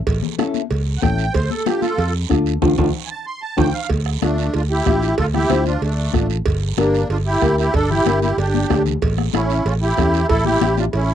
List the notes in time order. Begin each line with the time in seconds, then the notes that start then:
0.07 A1, bombo low, cowbell, high conga, long guiro
0.23 high conga, low conga
0.38 C#4 E4 A4, bombo rim, high conga, short guiro
0.54 high conga, short guiro
0.70 C#2, cowbell, high conga, long guiro
0.98 C#4 F#5 G5
1.02 A1 E4 A4, bombo low, bombo rim, high conga, low conga, short guiro
1.18 short guiro
1.34 D2 C5, bombo low, cowbell, high conga, long guiro
1.50 A4, high conga
1.66 D4 F4 G4 A4, bombo rim, high conga, short guiro
1.82 F4 A4, high conga, short guiro
1.98 F2, cowbell, high conga, long guiro
2.29 D2 D4 F4 A4, bombo low, bombo rim, high conga, short guiro
2.46 short guiro
2.62 D2 D4 F4 A4, bombo low, low conga, high timbale, long guiro
2.78 D2 D4 F4 A4, bombo low, low conga, high timbale, long guiro
3.06 G#5
3.10 A5
3.26 C6
3.42 A5
3.57 D2 D4 F4 A4 G5, bombo low, low conga, high timbale, long guiro
3.74 F5
3.90 D2, bombo low, cowbell, high conga
4.06 bombo rim
4.22 D2 A3 D4 F4 A4, bombo rim, high conga, short guiro
4.38 short guiro
4.54 D2 D4 F4, cowbell, high conga, long guiro
4.70 E4 G4
4.86 A1 D4 F4 G4, bombo low, bombo rim, high conga, short guiro
5.02 short guiro
5.18 D2 F4 A4, bombo low, cowbell, high conga, long guiro
5.34 E4 G4, bombo rim, high conga, low conga
5.49 D2 D4 F4 C5, bombo rim, high conga, short guiro
5.65 D4 F4, high conga, short guiro
5.82 D2 A3 D4, cowbell, high conga, long guiro
6.13 A1 D4 F4 A4, bombo low, bombo rim, high conga, low conga, short guiro
6.30 short guiro
6.46 G1, bombo low, cowbell, high conga, long guiro
6.77 G1 A#3 D4 G4 A#4, bombo rim, high conga, short guiro
6.94 short guiro
7.09 G1 D4 F4, cowbell, high conga, long guiro
7.26 E4 G4
7.41 D2 D4 G4 A#4, bombo low, bombo rim, high conga, short guiro
7.58 E4 G4, short guiro
7.74 G1 D4 A4, bombo low, cowbell, high conga, long guiro
7.90 E4 G4, low conga
8.06 G1 D4 G4 A#4, bombo rim, high conga, short guiro
8.22 E4 G4, high conga, short guiro
8.38 G1 D4 G4, cowbell, high conga, long guiro
8.54 high conga
8.69 D2 D4 G4 A4, bombo low, bombo rim, high conga, low timbale, short guiro
8.86 low conga, short guiro
9.02 A1, bombo low, cowbell, high conga, long guiro
9.18 bombo rim, high conga
9.33 A1 C#4 E4 A4, bombo rim, high conga, short guiro
9.50 short guiro
9.65 A1 C#4 F4, cowbell, high conga, long guiro
9.82 E4 G4
9.97 E2 C#4 E4 A4, bombo low, bombo rim, high conga, short guiro
10.14 short guiro
10.29 A1 E4 A4, bombo low, cowbell, high conga, long guiro
10.45 E4 G4, high conga, low conga
10.61 A1 C#4 E4 G4, bombo rim, high conga, short guiro
10.77 D4 F4, high conga, short guiro
10.93 A1 C#4 E4, cowbell, long guiro